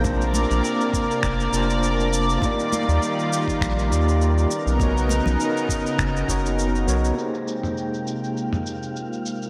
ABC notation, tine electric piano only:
X:1
M:4/4
L:1/8
Q:"Swing 16ths" 1/4=101
K:Ablyd
V:1 name="Tine electric piano"
[B,DFc=a]4- [B,DFca] [B,DFca]3 | [B,EFGd]4- [B,EFGd] [B,EFGd]2 z | [=B,^D^F^A^c]4- [B,DFAc] [B,DFAc]2 [B,DFAc] | [B,EGAc]8 |]